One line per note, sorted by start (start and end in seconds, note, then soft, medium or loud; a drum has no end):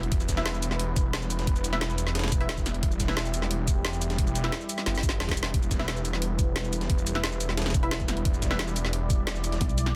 0.00 0.10 E1 loud
0.00 9.96 G3 medium
0.00 9.96 E4 medium
0.00 0.11 F#4 medium
0.00 closed hi-hat soft
0.12 1.46 E1 medium
0.12 2.82 B4 medium
0.12 kick loud
0.12 closed hi-hat medium
0.20 shaker soft
0.29 kick medium
0.29 snare soft
0.29 closed hi-hat medium
0.29 shaker medium
0.37 1.71 E4 medium
0.37 1.71 B4 medium
0.37 1.71 E5 medium
0.37 snare medium
0.37 snare soft
0.46 snare loud
0.46 closed hi-hat medium
0.54 shaker soft
0.63 closed hi-hat medium
0.63 shaker medium
0.71 snare soft
0.79 closed hi-hat medium
0.96 kick loud
0.96 closed hi-hat medium
0.96 shaker medium
1.13 snare loud
1.13 closed hi-hat loud
1.13 closed hi-hat medium
1.22 shaker soft
1.30 closed hi-hat medium
1.30 shaker medium
1.39 snare soft
1.39 closed hi-hat soft
1.47 2.82 E1 loud
1.47 kick loud
1.47 closed hi-hat medium
1.47 closed hi-hat loud
1.56 shaker soft
1.64 closed hi-hat medium
1.64 shaker medium
1.73 1.82 E4 medium
1.73 1.82 B4 medium
1.73 1.82 E5 medium
1.73 snare soft
1.81 snare loud
1.81 closed hi-hat medium
1.90 shaker soft
1.98 closed hi-hat medium
1.98 shaker medium
2.07 snare soft
2.15 snare loud
2.15 closed hi-hat medium
2.19 snare medium
2.19 closed hi-hat medium
2.24 snare medium
2.24 snare soft
2.24 closed hi-hat medium
2.28 snare medium
2.28 closed hi-hat medium
2.32 kick loud
2.32 closed hi-hat medium
2.32 shaker medium
2.40 2.55 E4 medium
2.40 2.55 B4 medium
2.40 2.55 E5 medium
2.40 closed hi-hat soft
2.49 snare loud
2.49 closed hi-hat medium
2.57 kick medium
2.57 shaker soft
2.66 snare soft
2.66 closed hi-hat medium
2.66 shaker medium
2.74 closed hi-hat soft
2.83 4.17 E1 loud
2.83 5.53 G4 medium
2.83 kick loud
2.83 closed hi-hat medium
2.83 closed hi-hat loud
2.91 shaker soft
3.00 kick medium
3.00 snare soft
3.00 closed hi-hat medium
3.00 shaker medium
3.08 4.42 E4 medium
3.08 4.42 B4 medium
3.08 4.42 E5 medium
3.08 snare medium
3.08 snare soft
3.17 snare loud
3.17 closed hi-hat medium
3.17 closed hi-hat loud
3.25 shaker soft
3.34 closed hi-hat medium
3.34 shaker medium
3.42 snare soft
3.51 closed hi-hat loud
3.51 closed hi-hat medium
3.68 kick loud
3.68 closed hi-hat medium
3.68 shaker medium
3.85 snare loud
3.85 closed hi-hat medium
3.93 shaker soft
4.01 closed hi-hat medium
4.01 shaker medium
4.10 snare soft
4.10 closed hi-hat soft
4.18 4.51 E1 loud
4.18 kick loud
4.18 closed hi-hat medium
4.18 closed hi-hat loud
4.27 shaker soft
4.35 closed hi-hat medium
4.35 shaker medium
4.44 4.53 E4 medium
4.44 4.53 B4 medium
4.44 4.53 E5 medium
4.44 snare soft
4.52 snare loud
4.52 closed hi-hat medium
4.52 closed hi-hat loud
4.61 shaker soft
4.69 closed hi-hat medium
4.69 shaker medium
4.78 snare soft
4.78 closed hi-hat soft
4.86 5.19 G1 loud
4.86 snare medium
4.86 closed hi-hat medium
4.95 snare medium
4.95 shaker soft
5.03 kick loud
5.03 closed hi-hat medium
5.03 shaker medium
5.09 snare medium
5.09 closed hi-hat soft
5.20 5.36 E1 loud
5.20 snare loud
5.20 snare medium
5.20 closed hi-hat medium
5.29 kick medium
5.29 snare loud
5.29 closed hi-hat medium
5.29 shaker soft
5.31 snare loud
5.37 5.53 E1 loud
5.37 closed hi-hat medium
5.37 shaker medium
5.43 snare loud
5.43 closed hi-hat soft
5.54 6.88 E1 loud
5.54 8.24 B4 medium
5.54 kick loud
5.54 closed hi-hat medium
5.54 closed hi-hat loud
5.63 shaker soft
5.71 kick medium
5.71 snare soft
5.71 closed hi-hat medium
5.71 shaker medium
5.79 7.13 E4 medium
5.79 7.13 B4 medium
5.79 7.13 E5 medium
5.79 snare medium
5.88 snare loud
5.88 closed hi-hat medium
5.88 closed hi-hat loud
5.96 shaker soft
6.05 closed hi-hat medium
6.05 shaker medium
6.13 snare soft
6.22 closed hi-hat loud
6.22 closed hi-hat medium
6.39 kick loud
6.39 closed hi-hat medium
6.39 shaker medium
6.56 snare loud
6.56 closed hi-hat medium
6.64 shaker soft
6.73 closed hi-hat medium
6.73 shaker medium
6.81 snare soft
6.81 closed hi-hat soft
6.90 8.24 E1 loud
6.90 kick loud
6.90 closed hi-hat loud
6.90 closed hi-hat medium
6.98 shaker soft
7.07 closed hi-hat medium
7.07 shaker medium
7.15 7.24 E4 medium
7.15 7.24 B4 medium
7.15 7.24 E5 medium
7.15 snare soft
7.24 snare loud
7.24 closed hi-hat loud
7.24 closed hi-hat medium
7.32 shaker soft
7.41 closed hi-hat medium
7.41 shaker medium
7.49 snare soft
7.57 snare loud
7.57 closed hi-hat loud
7.57 closed hi-hat medium
7.62 snare loud
7.62 closed hi-hat medium
7.66 snare medium
7.66 snare soft
7.66 closed hi-hat medium
7.70 snare loud
7.70 closed hi-hat medium
7.74 kick loud
7.74 closed hi-hat medium
7.74 shaker medium
7.83 7.98 E4 medium
7.83 7.98 B4 medium
7.83 7.98 E5 medium
7.83 closed hi-hat soft
7.91 snare loud
7.91 closed hi-hat medium
8.00 kick medium
8.00 shaker soft
8.08 snare medium
8.08 closed hi-hat medium
8.08 shaker medium
8.17 closed hi-hat soft
8.25 9.59 E1 loud
8.25 9.96 D5 medium
8.25 kick loud
8.25 closed hi-hat loud
8.25 closed hi-hat medium
8.34 shaker soft
8.42 kick medium
8.42 snare soft
8.42 closed hi-hat medium
8.42 shaker medium
8.51 9.84 E4 medium
8.51 9.84 B4 medium
8.51 9.84 E5 medium
8.51 snare medium
8.51 snare soft
8.59 snare loud
8.59 closed hi-hat medium
8.68 shaker soft
8.76 closed hi-hat medium
8.76 shaker medium
8.85 snare soft
8.93 closed hi-hat medium
9.10 kick loud
9.10 closed hi-hat medium
9.10 shaker medium
9.27 snare loud
9.27 closed hi-hat loud
9.27 closed hi-hat medium
9.35 shaker soft
9.44 closed hi-hat medium
9.44 shaker medium
9.52 snare soft
9.52 closed hi-hat soft
9.61 9.96 B1 loud
9.61 kick loud
9.61 closed hi-hat medium
9.69 shaker soft
9.78 closed hi-hat medium
9.78 shaker medium
9.86 snare soft